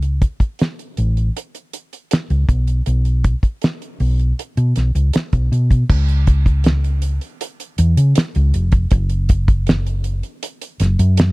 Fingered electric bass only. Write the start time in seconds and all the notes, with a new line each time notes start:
Already playing: C#2
0.41 muted fingered electric bass stroke
0.98 A1
2.30 C#2
2.49 B1
2.87 B1
3.43 muted fingered electric bass stroke
4.00 B1
4.57 B2
4.77 B1
4.95 C#2
5.33 B1
5.52 B2
5.90 C#2
7.79 E2
7.97 C#3
8.36 C#2
8.54 F1
8.92 F#1
10.80 F#1
10.99 F#2